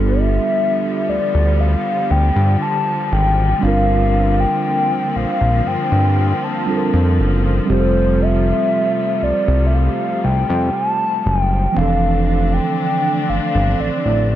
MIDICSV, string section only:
0, 0, Header, 1, 2, 480
1, 0, Start_track
1, 0, Key_signature, -1, "major"
1, 0, Tempo, 1016949
1, 1711, Time_signature, 4, 2, 24, 8
1, 6776, End_track
2, 0, Start_track
2, 0, Title_t, "String section"
2, 0, Program_c, 0, 48
2, 0, Note_on_c, 0, 50, 80
2, 0, Note_on_c, 0, 53, 83
2, 0, Note_on_c, 0, 55, 72
2, 0, Note_on_c, 0, 59, 69
2, 1693, Note_off_c, 0, 55, 0
2, 1693, Note_off_c, 0, 59, 0
2, 1715, Note_on_c, 0, 58, 69
2, 1715, Note_on_c, 0, 60, 68
2, 3613, Note_off_c, 0, 50, 0
2, 3614, Note_off_c, 0, 58, 0
2, 3614, Note_off_c, 0, 60, 0
2, 3629, Note_on_c, 0, 48, 74
2, 3629, Note_on_c, 0, 55, 67
2, 3629, Note_on_c, 0, 57, 71
2, 5531, Note_off_c, 0, 48, 0
2, 5531, Note_off_c, 0, 55, 0
2, 5531, Note_off_c, 0, 57, 0
2, 5533, Note_off_c, 0, 53, 0
2, 5551, Note_on_c, 0, 50, 74
2, 5551, Note_on_c, 0, 60, 69
2, 5552, Note_on_c, 0, 57, 67
2, 5552, Note_on_c, 0, 62, 82
2, 6776, Note_off_c, 0, 50, 0
2, 6776, Note_off_c, 0, 57, 0
2, 6776, Note_off_c, 0, 60, 0
2, 6776, Note_off_c, 0, 62, 0
2, 6776, End_track
0, 0, End_of_file